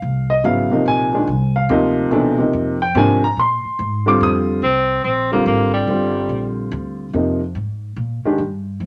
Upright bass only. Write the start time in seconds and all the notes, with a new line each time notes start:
0.02 C2
0.44 G#1
0.72 muted upright bass stroke
0.86 A#1
1.27 C2
1.69 D2
2.11 D#2
2.53 F2
2.95 G#2
3.37 A#2
3.64 muted upright bass stroke
3.79 G#2
4.21 F2
4.62 C2
5.04 A#1
5.46 G#1
5.87 G1
6.29 A#1
6.72 D2
7.13 F2
7.55 G#2
7.96 A#2
8.24 muted upright bass stroke
8.38 G2
8.80 F2